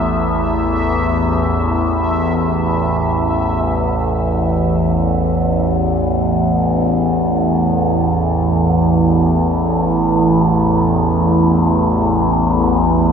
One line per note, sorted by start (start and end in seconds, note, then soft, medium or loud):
0.00 3.89 A1 medium
0.00 3.89 E2 medium
0.00 13.12 E3 medium
0.00 13.12 E4 medium
0.00 13.12 A4 medium
0.00 3.94 E5 medium
0.00 13.12 A5 medium
3.90 13.12 A1 medium
3.90 13.12 E2 medium